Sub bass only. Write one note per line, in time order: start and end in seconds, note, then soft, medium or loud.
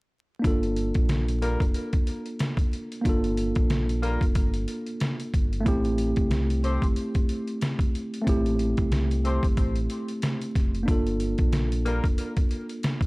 0.45 0.91 G1 loud
0.96 1.57 A#1 medium
1.61 1.74 F1 medium
3.05 3.52 G1 loud
3.56 4.17 A#1 medium
4.21 4.34 F1 medium
4.36 4.66 G1 loud
5.34 5.64 G1 medium
5.66 6.13 A1 loud
6.17 6.78 C2 loud
6.82 6.95 G1 medium
8.27 8.74 A1 loud
8.78 9.39 C2 loud
9.43 9.56 G1 medium
9.58 9.87 A1 loud
10.56 10.85 F1 medium
10.88 11.35 G1 loud
11.39 12.00 A#1 medium
12.04 12.17 F1 medium